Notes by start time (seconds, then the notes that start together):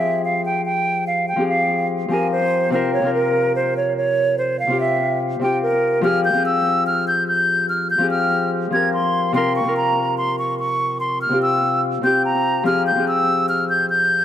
Already playing: F3 C4 G4 G#4 E5
0.25 F5
0.45 G5
0.66 G5
1.07 F5
1.28 G5
1.36 F3 C4 G4
1.41 G#4
1.49 F5
2.08 F3 C4 G4 G#5
2.13 A#4
2.32 C5
2.70 C3 C4 F4 C5
2.75 A#4
2.94 C#5
3.01 C3 C4 F4
3.06 A#4
3.14 A#4
3.55 C5
3.77 C#5
3.97 C#5
4.38 C5
4.59 F5
4.67 C3 C4 F4
4.72 G4
4.80 E5
5.39 C3 C4 F4 G5
5.44 G4
5.63 A#4
6.01 F3 C4 G4 F6
6.06 G#4
6.25 G6
6.33 F3 C4 G4
6.37 G#4
6.46 E6
6.87 F6
7.08 G6
7.28 G6
7.69 F6
7.90 G6
7.98 F3 C4 G4
8.03 G#4
8.11 F6
8.70 F3 C4 G4 G#6
8.75 A#4
8.94 C6
9.32 C3 C4 F4 C6
9.37 A#4
9.56 C#6
9.64 C3 C4 F4
9.69 A#4
9.77 A#5
10.18 C6
10.39 C#6
10.59 C#6
11.00 C6
11.22 F6
11.29 C3 C4 F4
11.34 G4
11.42 E6
12.02 C3 C4 F4 G6
12.06 G4
12.25 A#5
12.63 F3 C4 G4 F6
12.68 G#4
12.87 G6
12.95 F3 C4 G4
13.00 G#4
13.08 E6
13.49 F6
13.70 G6
13.90 G6